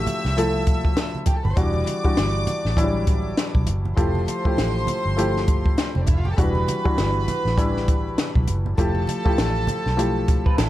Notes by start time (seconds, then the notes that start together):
Already playing: F3 A3 E4 F#4 G4 E5 E6
0.07 closed hi-hat, high conga, low conga
0.25 C2, snare
0.37 F3 A3 E4 A4, closed hi-hat, muted conga
0.67 kick, closed hi-hat
0.85 kick
0.97 snare, closed hi-hat, muted conga
1.15 high conga
1.26 G4 G5, muted fingered electric bass stroke, kick, closed hi-hat, high conga, low conga
1.36 A4 A5
1.44 G1 B4 B5, low conga
1.51 C5 C6
1.56 E1 E3 G3 D4 F#4 D5 D6, kick, closed hi-hat
1.74 high conga
1.87 closed hi-hat, high conga
2.04 E3 G3 D4 F#4, kick
2.17 G1, snare, closed hi-hat, muted conga
2.47 closed hi-hat, high conga, low conga
2.65 A1, snare
2.76 E3 F#3 D4 E4, kick, closed hi-hat, muted conga
2.84 G3
3.07 kick, closed hi-hat, muted conga
3.37 snare, closed hi-hat
3.55 B1, kick, high conga
3.67 F#1, closed hi-hat, high conga
3.85 low conga
3.96 F1 F3 A3 E4 G4 C5 C6, kick, closed hi-hat, muted conga
4.15 high conga
4.28 closed hi-hat, high conga
4.45 F3 A3 E4 G4, kick
4.57 A1, snare, closed hi-hat, muted conga
4.87 closed hi-hat, muted conga, high conga, low conga
5.05 G1
5.16 F3 A3 E4 G4, closed hi-hat, muted conga
5.37 snare
5.48 kick, closed hi-hat, muted conga
5.66 kick
5.78 snare, closed hi-hat, muted conga
5.95 F1 C4 C5, high conga
6.02 D4 D5
6.07 F1 E4 E5, kick, closed hi-hat, high conga
6.17 F4 F5
6.25 G4 G5, low conga
6.32 A4 A5
6.37 E1 E3 G3 D4 F#4 B4 B5, kick, closed hi-hat
6.55 high conga
6.68 closed hi-hat, muted conga, high conga
6.84 E3 G3 D4 F#4, kick
6.98 G1, snare, closed hi-hat
7.28 closed hi-hat, high conga, low conga
7.45 A1, snare
7.57 E3 G3 D4 E4, kick, closed hi-hat, muted conga
7.77 snare
7.88 kick, closed hi-hat, muted conga
8.18 snare, closed hi-hat, muted conga
8.35 B1, kick, high conga
8.48 F#1, closed hi-hat, muted conga, high conga
8.66 low conga
8.78 F1 F3 A3 E4 G4 A4 A5, kick, closed hi-hat, muted conga
8.95 high conga
9.07 closed hi-hat, high conga
9.25 F3 A3 E4 G4, kick
9.38 A1, snare, closed hi-hat
9.67 closed hi-hat, high conga, low conga
9.86 B1, snare
9.97 F3 A3 E4 G4, closed hi-hat
10.28 kick, closed hi-hat, muted conga
10.46 F4 B4, kick
10.58 A1 E4 A4, snare, closed hi-hat, muted conga